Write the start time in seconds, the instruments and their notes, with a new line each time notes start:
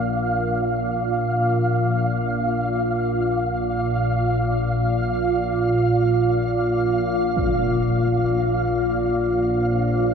Already playing: synth drone A#1 A#2, ambient pad A#3 F4 A#4, synth texture F5
7.37 impact
7.88 ambient pad C5
8.43 ambient pad G5